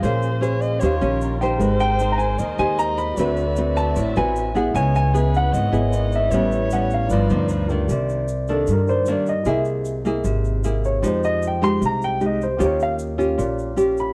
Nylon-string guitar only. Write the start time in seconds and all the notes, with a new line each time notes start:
0.04 A#3 C#4 G#4 C5
0.41 C#4 G#4 C5
0.82 D#3 C#4 G4 C5
1.01 C#4 G4
1.41 D#4 G4 C5
1.59 G#3
2.01 D#4 C5
2.40 D#3
2.59 D#4 G4 C5
3.19 D3 C4 F#4 B4
3.58 C4 F#4 B4
3.97 A2
4.17 C4 F#4 B4
4.55 B3 E4 G#4
4.75 C#3
5.14 B3 E4 G#4
5.55 G#2
5.72 B3 E4 G#4
6.33 A2 G3 B3 C#4
6.72 G3 B3 C#4
7.12 G2 F3 B3 D#4
7.30 F3 B3 D#4
7.70 D#3 A#3 D4
7.90 C3
8.49 D#3 A#3 D4
8.69 G2
9.08 D#3 A#3 D4
9.46 C3 A#3 E4 G#4
10.05 A#3 E4 G#4
10.25 C3
10.64 A#3 E4 G#4
11.02 F3 G#3 D#4 G4
11.61 G#3 D#4 G4
11.81 C3
12.20 G#3 D#4 G4
12.58 D#3 C#4 F4 G4
13.18 C#4 F4 G4
13.38 A#2
13.76 C#4 F4 G4